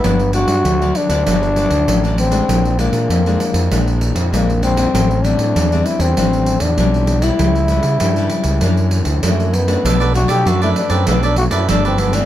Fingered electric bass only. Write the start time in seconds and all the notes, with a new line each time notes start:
0.04 G1
0.47 G2
0.64 D2
1.09 D2
1.27 G1
1.70 D2
1.88 A1
2.49 A#1
2.92 A#2
3.09 F2
3.54 F2
3.71 A#1
4.15 F2
4.32 A#1
4.94 A1
5.38 A2
5.56 E2
5.99 E2
6.17 A1
6.61 E2
6.77 B1
7.39 C#2
7.83 C#3
8.01 G2
8.44 C#2
8.62 F#2
9.05 D2
9.23 F#2
9.84 B1
10.28 B2
10.46 F#2
10.90 F#2
11.07 B1
11.52 F#2
11.69 G1